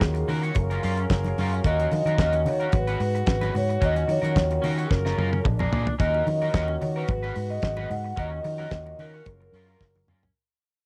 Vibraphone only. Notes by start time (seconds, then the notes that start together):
Already playing: G#4
1.66 D#5
2.21 D#5
2.48 C#5
2.75 B4
3.57 C#5
3.85 D#5
4.11 C#5
6.00 D#5
6.82 C#5
6.96 B4
7.50 D#5
7.91 F#5
8.19 D#5
8.74 D#5
9.01 A#4